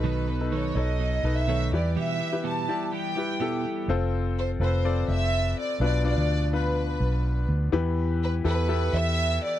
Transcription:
X:1
M:4/4
L:1/16
Q:1/4=125
K:Ephr
V:1 name="Violin section"
B4 ^c2 ^d4- d e3 =d2 | e4 a4 g6 z2 | z4 c2 c4 e4 d2 | d2 d4 B8 z2 |
z4 B2 B4 e4 d2 |]
V:2 name="Grand piano"
[^DAB]2 z [DAB]2 z [DA^c]3 z [DAB]2 [DAc]2 [EGB]2- | [EGB]2 z [EGB]2 z [EGd]3 z [EGB]2 [EGA]3 z | [CFAc]4- [CFAc] z [CFAB]2 [CFAd]6- [CFAd] z | [B,DFB]2 [B,DFd]3 z [B,DFB]6- [B,DFB] z3 |
[B,EGB]4- [B,EGB] z [B,EGA]2 [B,EGA]6- [B,EGA] z |]
V:3 name="Grand piano" clef=bass
B,,4 z8 z2 E,2- | E,4 z12 | z16 | B,,6 z8 z2 |
E,6 z8 z2 |]
V:4 name="Clean electric guitar"
[B,,^D,^F,B,^DA]2 [F,B,DA]2 [B,,D,F,B,DA]2 [F,B,DA]2 [F,B,DA]2 [F,B,DA]2 [B,,D,F,B,DA]2 [E,G,B,G]2 | [E,,B,,E,G,B,G]2 [E,G,B,G]2 [E,,B,,E,G,B,G]2 [E,G,B,G]2 [E,G,B,G]2 [E,G,B,G]2 [E,,B,,E,G,B,G]2 [E,G,B,G]2 | z16 | z16 |
z16 |]
V:5 name="Fingered electric bass" clef=bass
B,,,6 B,,,4 B,,,4 E,,2 | z16 | F,,,6 F,,,4 F,,,4 z2 | B,,,3 D,,6- D,, B,,,4 D,,2 |
E,,6 E,,4 E,,4 z2 |]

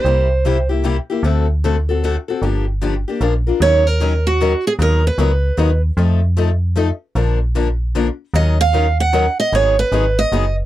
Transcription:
X:1
M:3/4
L:1/8
Q:"Swing" 1/4=152
K:Gm
V:1 name="Steel-string acoustic guitar"
c3 z3 | z6 | z6 | [K:Ebm] d B2 G2 A |
^A =B4 z | z6 | z6 | e f2 g2 e |
d c2 e2 z |]
V:2 name="Steel-string acoustic guitar"
[C,G,B,=EG] z [C,G,B,EG] [B,EG] [C,G,B,EG] [B,EG] | [D,A,C^FA] z [D,A,CFA] [CFA] [D,A,CFA] [CFA] | [D,F,B,DG] z [D,F,B,DG] [B,DG] [F,_A,DFB] [DFB] | [K:Ebm] [E,G,DEB] z [E,G,DEB] z [E,G,DEB] z |
[^D,^F,=B,^D^A] z [D,F,B,DA] z [D,F,B,DA] z | [F,=A,E=A] z [F,A,EA] z [F,A,EA] z | [=D,F,B,=DB] z [D,F,B,DB] z [D,F,B,DB] z | [E,G,DEB] z [E,G,DEB] z [E,G,DEB] z |
[E,G,CEA] z [E,G,CEA] z [E,G,CEA] z |]
V:3 name="FM bass" clef=bass
C,,6 | D,,6 | G,,,4 B,,,2 | [K:Ebm] E,,6 |
^D,,2 _D,,2 ^D,,2 | F,,6 | B,,,6 | E,,6 |
A,,,2 A,,,2 G,,,2 |]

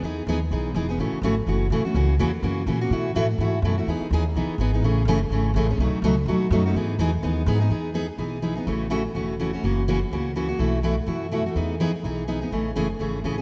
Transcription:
X:1
M:4/4
L:1/8
Q:"Swing" 1/4=250
K:E
V:1 name="Steel-string acoustic guitar"
[E,B,DG] z [E,B,DG] z [E,B,DG] z [E,B,DG] [B,DG] | [C,E,A,CF] z [C,E,A,CF] z [C,E,A,CF] z [C,E,A,CF] [A,CF] | [C,E,^A,CF] z [C,E,A,CF] z [C,E,A,CF] z [C,E,A,CF] [A,CF] | [B,,E,A,EF] z [B,,E,A,EF] z [B,,E,A,EF] z [B,,E,A,EF] [A,EF] |
[E,B,DG] z [E,B,DG] z [E,B,DG] z [E,B,DG] [B,DG] | [C,E,A,CG] z [C,E,A,CG] z [C,E,A,CG] z [C,E,A,CG] [A,CG] | [B,,F,A,DF] z [B,,F,A,DF] z [B,,F,A,DF] z [B,,F,A,DF] [A,DF] | [E,B,DG] z [E,B,DG] z [E,B,DG] z [E,B,DG] [B,DG] |
[E,B,DG] z [E,B,DG] z [E,B,DG] z [E,B,DG] [B,DG] | [C,E,A,CF] z [C,E,A,CF] z [C,E,A,CF] z [C,E,A,CF] [A,CF] | [C,E,^A,CF] z [C,E,A,CF] z [C,E,A,CF] z [C,E,A,CF] [A,CF] | [B,,E,A,EF] z [B,,E,A,EF] z [B,,E,A,EF] z [B,,E,A,EF] [A,EF] |
[E,B,DG] z [E,B,DG] z [E,B,DG] z [E,B,DG] [B,DG] | [C,E,A,CG] z [C,E,A,CG] z [C,E,A,CG] z [C,E,A,CG] G |]
V:2 name="Upright bass" clef=bass
E,,2 D,,2 B,,,2 E,,,2 | A,,, z G,,,2 F,,,2 A,,, z | C,,2 E,,2 F,,2 ^A,,2 | B,,2 A,,2 G,,2 F,,2 |
E,, z D,,2 B,,, z G,,,2 | A,,,2 F,,,2 G,,,2 A,,,2 | B,,, z C,,2 D,,2 F,,2 | G,,2 E,,2 D,,2 G,,2 |
E,,4 B,,,4 | A,,,4 E,,,4 | F,,,4 C,,4 | B,,,4 F,,4 |
E,,4 B,,,4 | A,,,2 F,,,2 G,,,2 A,,,2 |]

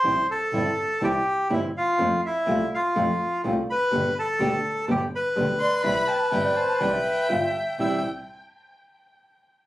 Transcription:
X:1
M:4/4
L:1/16
Q:1/4=124
K:C
V:1 name="Violin"
z16 | z16 | z12 z2 c'2 | b2 a2 g2 a2 g8 |
g2 z12 z2 |]
V:2 name="Bandoneon"
[cc']2 [Aa]6 [Gg]4 [Ee]2 [Ff]2- | [Ff]2 [Ee]4 [Ff]6 z2 [Bb]2- | [Bb]2 [Aa]6 [Gg]2 [Bb]6- | [Bb]12 z4 |
e'2 z12 z2 |]
V:3 name="Flute"
z16 | z16 | z12 z2 d2 | e2 g2 e d c2 d e6- e |
e2 z12 z2 |]
V:4 name="Nylon-string guitar" clef=bass
[C,E,G,CE]2 z2 [C,E,G,CE]2 z2 [C,E,G,CE]2 z2 [C,E,G,CE]2 z2 | [C,F,A,CF]2 z2 [C,F,A,CF]2 z2 [C,F,A,CF]2 z2 [C,F,A,CF]2 z2 | [B,,D,G,B,G]2 z2 [B,,D,G,B,G]2 z2 [B,,D,G,B,G]2 z2 [B,,D,G,B,G]2 z2 | [C,E,G,CE]2 z2 [C,E,G,CE]2 z2 [C,E,G,CE]2 z2 [G,B,F]2 z2 |
[C,E,G,CE]2 z12 z2 |]
V:5 name="Double bass" clef=bass
C,,2 z2 G,,,2 z2 C,,2 z2 G,,,2 z2 | F,,2 z2 C,,2 z2 F,,2 z2 C,,2 z2 | G,,,2 z2 D,,2 z2 G,,,2 z2 D,,2 z2 | C,,2 z2 G,,,2 z2 C,,2 z2 G,,,2 z2 |
C,,2 z12 z2 |]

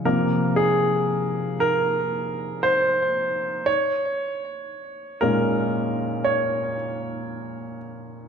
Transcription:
X:1
M:4/4
L:1/8
Q:1/4=58
K:Bbdor
V:1 name="Grand piano"
B A2 B2 c2 d- | d2 B2 d3 z |]
V:2 name="Grand piano" clef=bass
[C,F,B,]3 z4 z | z2 [B,,A,D]3 z3 |]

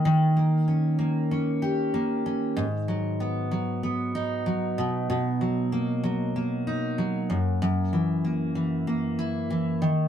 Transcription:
X:1
M:4/4
L:1/8
Q:"Swing 16ths" 1/4=95
K:F#mix
V:1 name="Steel-string acoustic guitar" clef=bass
D, A, C A, C =G A, C | G,, F, B, F, B, D F, B,, | B,, F, A, F, A, D F, F,, | F,, E, A, E, A, E E, D, |]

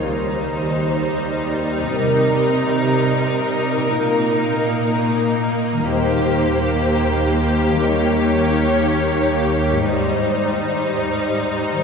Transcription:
X:1
M:4/4
L:1/8
Q:1/4=61
K:Eb
V:1 name="Violin section"
c4 B4- | B4 c4 | _d4 c4 |]
V:2 name="Violin section"
E8- | E4 G4- | G4 E4 |]
V:3 name="Harp"
[E,G,Ec]4 [C,G,EB]4 | [B,,B,EB]4 [E,G,Ec]4 | [E,G,E_d]4 [A,,G,Ec]4 |]
V:4 name="Viola section" clef=bass
G,8 | B,8- | B,4 G,4 |]
V:5 name="Cello section" clef=bass
E,,4 C,4 | B,,4 E,,4- | E,,4 A,,4 |]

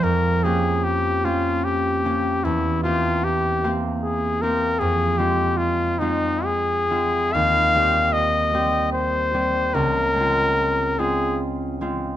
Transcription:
X:1
M:3/4
L:1/8
Q:1/4=75
K:Cphr
V:1 name="Trumpet"
B A G F G2 | =E F G z A B | A G F E A2 | f2 e2 c2 |
B3 A z2 |]
V:2 name="Harp"
[F,,F,F] [B,DG]2 [B,DG]2 [B,DG] | =E,, [B,CG]2 [B,CG]2 [B,CG] | F,, [A,CF]2 [A,CF]2 [A,CF] | E,, [G,CG]2 [G,CG]2 [G,CG] |
D,, [A,CF]2 [A,CF]2 [A,CF] |]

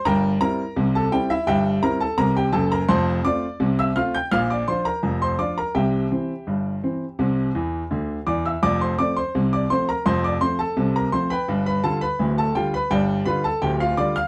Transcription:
X:1
M:2/4
L:1/16
Q:1/4=84
K:F
V:1 name="Grand piano"
[Bgb]2 [Bb]3 [Aa] [Gg] [Ee] | [Geg]2 [Bb] [Aa] [Bb] [Gg] [Aa] [Bb] | [cac']2 [dd']3 [ee'] [ff'] [gg'] | [ff'] [dd'] [cc'] [Bb]2 [cc'] [dd'] [Bb] |
[Geg]8- | [Geg]4 z2 [dd'] [ee'] | [dd'] [cc'] [dd'] [cc']2 [dd'] [cc'] [Bb] | [cc'] [dd'] [cc'] [Aa]2 [Bb] [cc'] [=Bg=b]- |
[=Bg=b] [Bb] [Aa] [Bb]2 [Aa] [Gg] [Bb] | [Gdg]2 [=B=b] [Aa] [Gg] [Ff] [dd'] [ff'] |]
V:2 name="Grand piano" clef=bass
[G,,,G,,]2 [G,CE]2 [C,,C,]2 [G,CE]2 | [G,,,G,,]2 [G,CE]2 [C,,C,]2 [_G,,,_G,,]2 | [F,,,F,,]2 [A,CF]2 [C,,C,]2 [A,CF]2 | [B,,,B,,]2 [F,DF]2 [F,,,F,,]2 [F,DF]2 |
[C,,C,]2 [E,C]2 [G,,,G,,]2 [E,C]2 | [C,,C,]2 [E,,E,]2 [D,,D,]2 [E,,E,]2 | [F,,,F,,]2 [F,A,C]2 [C,,C,]2 [F,A,C]2 | [F,,,F,,]2 [F,A,C]2 [C,,C,]2 [F,A,C]2 |
[G,,,G,,]2 [D,G,F]2 [D,,,D,,]2 [D,G,F]2 | [G,,,G,,]2 [D,G,F]2 [D,,,D,,]2 [D,G,F]2 |]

